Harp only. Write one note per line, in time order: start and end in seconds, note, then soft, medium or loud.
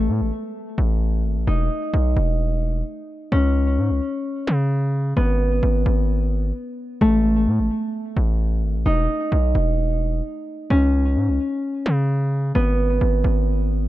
0.00 2.96 A3 medium
0.00 0.89 B3 medium
1.47 4.18 D#4 medium
3.32 6.22 C#4 medium
5.17 8.27 B3 medium
7.01 10.34 A3 medium
8.86 11.56 D#4 medium
10.70 13.60 C#4 medium
12.55 13.88 B3 medium